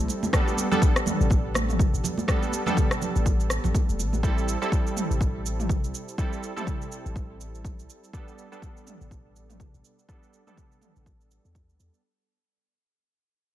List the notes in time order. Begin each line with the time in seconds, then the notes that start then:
Already playing: G3 C4 E4 A4
0.08 muted conga, cabasa
0.23 high conga, cabasa
0.33 G3 B3 D4 A4, kick, cross-stick, cabasa
0.48 muted conga, cabasa
0.58 high conga, cabasa
0.71 G3 B3 D4 A4, low conga, cabasa
0.82 kick, muted conga, cabasa
0.96 cross-stick, cabasa
1.06 mid tom, high conga, low conga, cabasa
1.20 A1, cabasa
1.30 A1, kick, muted conga, cabasa
1.54 cross-stick, high conga, low conga, cabasa
1.69 mid tom, muted conga, cabasa
1.79 kick, cabasa
1.94 A1, cabasa
2.04 muted conga, low conga, cabasa
2.18 high conga, cabasa
2.28 G3 B3 D4 A4, kick, cross-stick, cabasa
2.42 muted conga, cabasa
2.52 high conga, cabasa
2.66 G3 B3 D4 A4, mid tom, low conga, cabasa
2.77 kick, muted conga, cabasa
2.91 cross-stick, cabasa
3.01 high conga, low conga, cabasa
3.16 A1, cabasa
3.26 kick, muted conga, high conga, cabasa
3.40 cabasa
3.50 cross-stick, cabasa
3.64 A1, muted conga, low conga, cabasa
3.75 kick, high conga, cabasa
3.89 E1, cabasa
3.99 A1, muted conga, cabasa
4.13 high conga, cabasa
4.23 G3 C4 E4 A4, kick, cabasa
4.38 cabasa
4.48 cabasa
4.62 G3 C4 E4 A4, cabasa
4.72 kick, cabasa
4.87 cabasa
4.97 mid tom, cabasa
5.10 A1, cabasa
5.21 kick, cabasa
5.46 cabasa
5.60 mid tom, cabasa
5.69 kick, cabasa
5.84 C2, cabasa
5.95 cabasa
6.09 cabasa
6.18 G3 C4 E4 A4, kick, cabasa
6.33 cabasa
6.43 cabasa
6.56 G3 C4 E4 A4, mid tom, cabasa
6.67 kick, cabasa
6.82 cabasa
6.92 cabasa
7.06 A1, cabasa
7.16 kick, cabasa
7.41 cabasa
7.55 cabasa
7.65 kick, cabasa
7.79 C2, cabasa
7.90 cabasa
8.04 cabasa
8.13 G3 B3 D4 A4, kick, cabasa
8.28 cabasa
8.38 cabasa
8.52 G3 B3 D4 A4, cabasa
8.62 kick, cabasa
8.77 cabasa
8.87 mid tom, cabasa
9.01 A1, cabasa
9.11 A1, kick, cabasa
9.36 cabasa
9.50 mid tom, cabasa
9.60 kick, cabasa
9.74 A1, cabasa
9.85 cabasa
9.99 cabasa
10.08 G3 B3 D4 A4, kick, cabasa
10.23 cabasa
10.33 cabasa
10.47 G3 B3 D4 A4, mid tom, cabasa
10.57 kick, cabasa
10.72 cabasa
10.82 mid tom, cabasa
10.96 A1, cabasa
11.06 kick, cabasa
11.21 cabasa
11.31 cabasa
11.45 E2, cabasa
11.55 kick, cabasa
11.69 D2, cabasa
11.80 E2, cabasa
11.94 cabasa